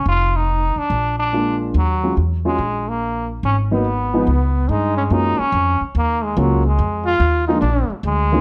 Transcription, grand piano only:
X:1
M:4/4
L:1/8
Q:"Swing" 1/4=143
K:Ebm
V:1 name="Grand piano"
z6 [A,B,=DF]2 | z [G,A,DF] z [G,A,DF] z4 | z [G,B,CE] z [F,A,CE] z4 | [G,A,B,DF] z4 z [G,A,B,DF] z |
z3 [F,A,B,=DF] z3 [E,G,B,_DF] |]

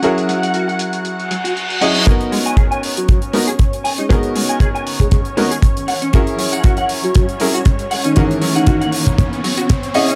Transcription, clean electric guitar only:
X:1
M:4/4
L:1/16
Q:"Swing 16ths" 1/4=118
K:G#m
V:1 name="Clean electric guitar"
F z F, f F f z4 F, F z2 f C | G z G, g G g z4 G, G z2 g D | G z G, g G g z4 G, G z2 f C | F z F, f F f z4 F, F z2 f C |
F z F, f F f z4 F, F z2 f C |]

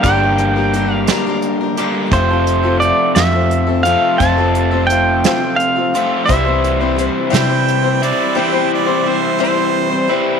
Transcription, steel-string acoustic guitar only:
X:1
M:6/8
L:1/16
Q:3/8=58
K:F
V:1 name="Steel-string acoustic guitar"
[G,DGB] [DGB]2 [DGB] [G,DGB]2 [G,DGB] [DGB]2 [DGB] [G,DGB]2 | [F,A,CFA] [CFA]2 [CFA] [A,CFA]2 [F,A,CFA] [CFA]2 [CFA] [A,CFA]2 | [F,A,CFA] [CFA]2 [CFA] [A,CFA]2 [F,A,CFA] [CFA]2 [CFA] [A,CFA]2 | [C,E,G,CEc] [G,CEc]2 [G,CEc] [G,CEc]2 [C,E,G,CEc] [G,CEc]2 [G,CEc] [G,CEc]2 |
[C,E,G,CEc] [G,CEc]2 [G,CEc] [G,CEc]2 [C,E,G,CEc] [G,CEc]2 [G,CEc] [G,CEc]2 |]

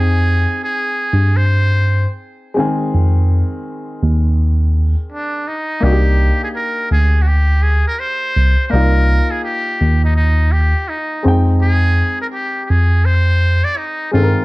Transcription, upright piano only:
X:1
M:4/4
L:1/8
Q:"Swing 16ths" 1/4=83
K:Cm
V:1 name="Upright piano"
[CEAg]6- [CEAg] [E,A,CA]- | [E,A,CA]6- [E,A,CA] z | [B,DE^FG]8 | [B,EFd]6- [B,EFd] [A,CEg]- |
[A,CEg]6- [A,CEg] [E,A,C=AB] |]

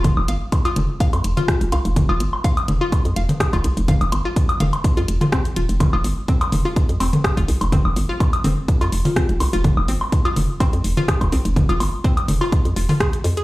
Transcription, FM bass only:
X:1
M:4/4
L:1/16
Q:"Swing 16ths" 1/4=125
K:Cphr
V:1 name="FM bass" clef=bass
z F,,, G,,, z3 F,,, z2 F,, F,,, z2 F,,, C,, F,,, | z F,,, G,,, z3 F,,, z2 F,, F,,, z2 F,,, C,, F,,, | z F,,, G,,, z3 F,,, z2 F,, F,,, z3 E,,, F,,, | z F,,, G,,, z3 F,,, z2 F,, F,,, z2 F,,, C,, F,,, |
z F,,, G,,, z3 F,,, z2 F,, F,,, z2 F,,, C,, F,,, | z F,,, G,,, z3 F,,, z2 F,, F,,, z2 F,,, C,, F,,, | z F,,, G,,, z3 F,,, z2 F,, F,,, z3 F,, z |]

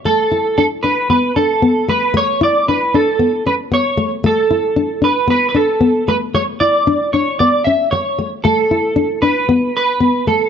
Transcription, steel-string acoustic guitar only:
X:1
M:4/4
L:1/8
Q:"Swing 16ths" 1/4=114
K:Amix
V:1 name="Steel-string acoustic guitar"
A, E D D B, D B, A, | A, E D D B, C B, A, | A, E D D B, D B, A, | A, E D D B, C z A, |
A, E D D B, z B, A, |]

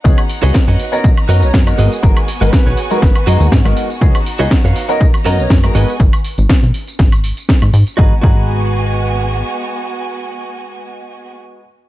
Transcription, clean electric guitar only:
X:1
M:4/4
L:1/16
Q:"Swing 16ths" 1/4=121
K:G#m
V:1 name="Clean electric guitar"
z3 [FBcd] z [FBcd]3 z2 [FABd]2 z2 [FGBd]2- | [FGBd]2 z [FGBd] z [FGBc]3 z2 [FGBd]2 z4 | z3 [FBcd] z [FBc^e]3 z2 [FABd]2 z2 [FGBd]2 | z16 |
[FGB] z [FGB]12- [FGB]2- | [FGB]16 |]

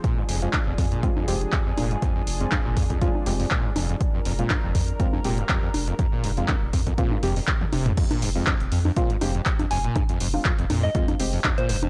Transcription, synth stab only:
X:1
M:4/4
L:1/16
Q:"Swing 16ths" 1/4=121
K:Fdor
V:1 name="Synth stab"
z3 [A,CF] z4 [A,CF] z [A,CG] z4 z | z3 [A,CF] z4 [A,CF] z [A,CG] z4 z | z3 [A,CF] z4 [A,CF] z [A,CG] z4 z | z3 [A,CF] z4 [A,CF] z [A,CG] z4 z |
z3 [A,CF] z4 [A,CF] z [A,CG] z4 z | z3 [A,CF] z4 [A,CF] z [A,CG] z4 z |]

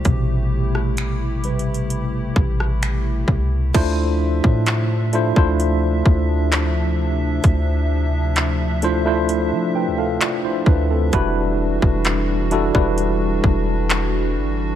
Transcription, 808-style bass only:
X:1
M:4/4
L:1/16
Q:1/4=65
K:Ddor
V:1 name="808-style bass" clef=bass
A,,,8- A,,,2 A,,,4 C,,2 | D,,3 A,,4 D,,3 D,,6 | D,,8- D,, F,3/2 D,,3/2 z2 D,,2 | E,,,3 E,,,4 E,,,3 E,,,4 G,,,2 |]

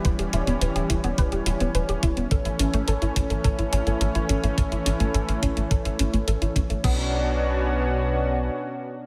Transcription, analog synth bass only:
X:1
M:4/4
L:1/16
Q:1/4=106
K:Bm
V:1 name="Analog synth bass" clef=bass
E,,, E,,, E,,, E,,, E,,, E,,, E,,, E,,, E,,, E,,, E,,, E,,, E,,, E,,, E,,, E,,, | A,,, A,,, A,,, A,,, A,,, A,,, A,,, A,,, A,,, A,,, A,,, A,,, A,,, A,,, A,,, A,,, | A,,, A,,, A,,, A,,, A,,, A,,, A,,, A,,, A,,, A,,, A,,, A,,, A,,, A,,, A,,, A,,, | B,,,12 z4 |]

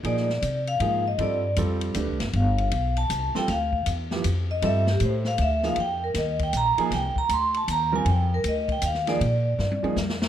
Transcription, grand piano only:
X:1
M:3/4
L:1/8
Q:"Swing" 1/4=157
K:Gphr
V:1 name="Grand piano"
[F,B,EA] z3 [F,B,EA] z | [G,CF=A] z [G,CFA]2 [=A,DG=B] z | z4 z [G,CF=A] | z3 [F,=B,=EG] z2 |
[G,CF=A] z4 [F,B,E_A] | z4 z [F,B,EA] | z4 z [G,CFB] | z4 z [F,B,EA] |
z3 [F,B,EA] z2 |]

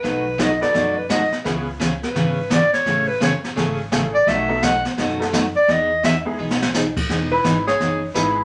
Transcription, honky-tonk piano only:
X:1
M:4/4
L:1/8
Q:"Swing" 1/4=170
K:E
V:1 name="Honky-tonk piano"
z3 [B,DFAB] z4 | [B,CEGB] z6 z | z4 [A,CEGA] z [A,CEGA] z | z [A,B,DFA] z3 [A,B,DFA] z2 |
z3 [G,B,DEG] z4 | z6 [G,B,DEG] z |]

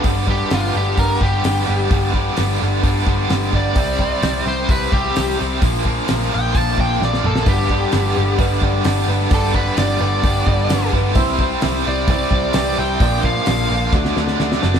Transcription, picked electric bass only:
X:1
M:4/4
L:1/8
Q:1/4=130
K:Clyd
V:1 name="Picked electric bass" clef=bass
G,,,2 G,,, G,,, G,,, G,,, G,,, G,,, | G,,,2 G,,, G,,, G,,, G,,, G,,, G,,, | C,,2 C,, C,, C,, C,, C,, C,, | _B,,,2 B,,, B,,, B,,, B,,, B,,, B,,, |
G,,,2 G,,, G,,, G,,, G,,, G,,, G,,, | G,,,2 G,,, G,,, G,,, G,,, G,,, G,,, | C,,2 C,, C,, C,, C,, C,, C,, | _B,,,2 B,,, B,,, D,, D,, D,, F,,, |]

